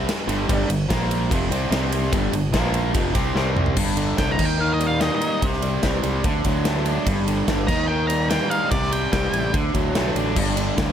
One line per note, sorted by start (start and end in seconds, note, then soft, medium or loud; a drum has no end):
0.09 snare loud
0.09 ride loud
0.27 0.47 G1 loud
0.27 0.47 G2 medium
0.27 0.47 D3 medium
0.27 0.48 G3 loud
0.27 ride medium
0.48 0.68 G1 loud
0.48 0.67 G2 loud
0.48 0.67 D3 loud
0.48 0.69 G3 loud
0.48 kick loud
0.48 ride loud
0.68 0.88 G1 medium
0.68 0.85 G2 medium
0.68 0.85 D3 medium
0.68 ride medium
0.89 1.28 A#1 loud
0.89 1.29 A#2 loud
0.89 1.29 F3 loud
0.89 1.30 A#3 loud
0.89 kick medium
0.89 snare loud
0.89 ride loud
1.11 ride medium
1.30 1.50 F1 medium
1.30 1.50 F2 medium
1.30 1.49 C3 medium
1.30 1.50 F3 loud
1.30 kick loud
1.30 ride loud
1.50 1.70 C2 loud
1.50 1.69 C3 loud
1.50 1.70 G3 loud
1.50 1.70 C4 loud
1.50 ride medium
1.70 2.09 C2 medium
1.70 2.11 C3 loud
1.70 2.12 G3 medium
1.70 2.12 C4 loud
1.70 snare loud
1.70 ride loud
1.92 ride medium
2.12 2.31 G1 loud
2.12 2.31 G2 loud
2.12 2.31 D3 loud
2.12 2.33 G3 loud
2.12 kick loud
2.12 ride loud
2.32 2.51 G1 medium
2.32 2.49 G2 medium
2.32 2.52 D3 medium
2.32 ride medium
2.52 2.92 A#1 loud
2.52 2.93 A#2 medium
2.52 2.94 F3 loud
2.52 2.94 A#3 loud
2.52 kick medium
2.52 snare loud
2.52 ride loud
2.74 ride medium
2.94 3.14 F1 medium
2.94 3.14 F2 medium
2.94 3.12 C3 loud
2.94 3.13 F3 loud
2.94 kick loud
2.94 ride loud
3.13 3.34 C2 medium
3.13 3.34 C3 loud
3.13 3.34 G3 loud
3.13 3.35 C4 loud
3.13 kick medium
3.13 ride medium
3.35 3.74 C2 loud
3.35 3.76 C3 medium
3.35 3.76 G3 medium
3.35 3.76 C4 loud
3.35 snare medium
3.57 mid tom medium
3.66 floor tom medium
3.77 4.12 G1 medium
3.77 4.39 G2 medium
3.77 kick loud
3.77 crash loud
3.97 4.16 D3 medium
3.97 ride medium
4.18 4.36 C2 medium
4.18 4.37 D3 medium
4.18 4.31 G5 medium
4.18 kick medium
4.18 snare loud
4.18 ride loud
4.31 4.45 A#5 medium
4.38 5.08 D#2 medium
4.38 4.58 D#3 medium
4.38 kick loud
4.38 crash loud
4.45 4.60 G5 medium
4.59 5.41 D#3 medium
4.59 4.73 F5 medium
4.74 4.87 D#5 medium
4.80 5.41 G3 medium
4.80 ride medium
4.87 5.00 F5 medium
5.00 5.41 A#3 medium
5.00 5.14 D#5 medium
5.00 snare loud
5.00 ride medium
5.16 5.42 D#5 medium
5.21 5.42 D#4 medium
5.21 ride medium
5.42 5.77 C2 medium
5.42 5.83 C3 medium
5.42 kick loud
5.42 ride loud
5.53 snare soft
5.62 6.02 G3 medium
5.62 ride medium
5.83 6.01 C2 loud
5.83 6.24 C3 medium
5.83 kick medium
5.83 snare loud
5.83 ride medium
6.03 6.21 C2 medium
6.03 6.24 G3 medium
6.03 ride medium
6.24 6.42 D2 loud
6.24 7.07 D3 medium
6.24 kick loud
6.24 ride medium
6.45 6.97 D2 medium
6.45 7.07 F#3 medium
6.45 kick medium
6.45 ride medium
6.65 7.06 A3 medium
6.65 snare loud
6.65 ride loud
6.86 7.06 D4 medium
6.86 ride medium
7.06 7.41 G1 loud
7.06 7.68 G2 medium
7.06 kick loud
7.06 ride loud
7.27 7.47 D3 medium
7.27 ride medium
7.48 7.65 G1 loud
7.48 7.68 D3 medium
7.48 kick medium
7.48 snare loud
7.48 ride loud
7.67 8.38 D#2 medium
7.67 7.87 D#3 medium
7.67 7.87 A#5 loud
7.67 kick loud
7.67 crash medium
7.88 8.71 D#3 medium
7.88 8.07 G5 loud
8.07 8.71 G3 medium
8.07 8.28 A#5 medium
8.07 ride medium
8.30 8.71 A#3 medium
8.30 8.50 G5 medium
8.30 snare loud
8.30 ride loud
8.50 8.72 D#4 medium
8.50 8.70 F5 medium
8.50 ride medium
8.71 9.06 C2 loud
8.71 9.11 C3 medium
8.71 8.91 D5 medium
8.71 kick loud
8.71 ride loud
8.83 snare soft
8.92 9.31 G3 medium
8.92 9.11 G5 loud
8.92 ride medium
9.12 9.30 C2 loud
9.12 9.53 C3 medium
9.12 9.52 G5 medium
9.12 kick medium
9.12 snare loud
9.12 ride loud
9.32 9.50 A1 medium
9.32 9.53 G3 medium
9.32 ride medium
9.53 9.71 D2 medium
9.53 10.36 D3 medium
9.53 kick loud
9.53 ride medium
9.74 9.92 D2 medium
9.74 10.36 F#3 medium
9.74 kick medium
9.74 ride medium
9.95 10.13 B1 medium
9.95 10.36 A3 medium
9.95 snare loud
9.95 ride medium
10.15 10.34 A1 medium
10.15 10.36 D4 medium
10.15 ride medium
10.36 10.71 G1 loud
10.36 10.92 G2 medium
10.36 kick loud
10.36 crash loud
10.56 10.76 D3 medium
10.56 ride medium
10.77 10.92 D2 medium
10.77 10.92 D3 medium
10.77 kick medium
10.77 snare loud
10.77 ride loud